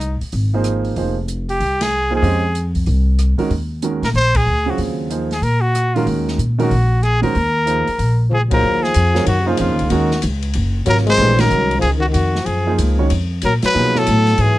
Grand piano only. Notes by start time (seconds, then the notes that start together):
0.54 F3 A#3 D#4 G#4 C5
0.96 F3 A#3 D#4 G#4 C5
2.10 F3 A#3 D#4 G#4 C5
2.21 G#3 C#4 G4 C5 D#5
3.38 D#3 G#3 C#4 F#4 A#4
3.83 D#3 G#3 C#4 F#4 A#4
4.66 C#3 F#3 C4 F4 G#4
5.10 F3 A#3 D#4 G#4 C5
5.96 D#3 G#3 C#4 F#4 A#4
6.58 D#3 G#3 C#4 F#4 A#4
7.22 D#3 G#3 C#4 F#4 C5
7.66 F3 A#3 D#4 G#4 C5
8.51 A#3 D#4 F4 G#4 C5
9.14 F#3 C4 F4 A#4 C#5
9.46 F3 A#3 D#4 G#4 C5
9.90 D#3 G#3 C#4 F#4 A#4
10.86 C3 F#3 F4 A#4 C#5
11.18 E3 A3 D4 G4 B4
11.39 D#3 G#3 C#4 F#4 A#4
12.66 F3 A#3 D#4 G#4 C5
12.98 D#3 G#3 C#4 F#4 C#5
13.74 F3 A#3 D#4 G#4 C5
13.94 F#3 B3 E4 A4 C#5